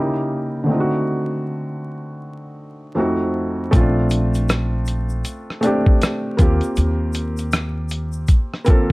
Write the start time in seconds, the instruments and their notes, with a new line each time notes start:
Already playing: felt piano C#3 A#3 D#4 E4 G4
0.64 felt piano D3 A3
0.69 felt piano C4 D#4
0.74 felt piano F4
0.80 felt piano F#4
2.95 felt piano F2 A3 C4 D#4
2.99 felt piano F#4
3.71 upright bass A#1, felt piano A3 C4 C#4, kick, closed hi-hat, shaker
3.76 felt piano F4
3.81 felt piano D4
4.10 closed hi-hat, shaker
4.34 closed hi-hat, shaker
4.49 cross-stick, closed hi-hat, shaker
4.86 closed hi-hat, shaker
5.09 shaker
5.25 closed hi-hat, shaker
5.50 cross-stick
5.61 felt piano A3 C4 D4, closed hi-hat, shaker
5.66 felt piano G4
5.86 kick
6.02 cross-stick, closed hi-hat, shaker
6.37 upright bass D#2, felt piano A#3 C4 F4, kick, closed hi-hat, shaker
6.42 felt piano G4
6.61 closed hi-hat, shaker
6.76 upright bass D#2, closed hi-hat, shaker
7.13 closed hi-hat, shaker
7.37 closed hi-hat, shaker
7.52 cross-stick, closed hi-hat, shaker
7.89 closed hi-hat, shaker
8.12 shaker
8.28 kick, closed hi-hat, shaker
8.54 cross-stick
8.64 felt piano A#3 C4 F4, kick, closed hi-hat, shaker
8.69 felt piano A4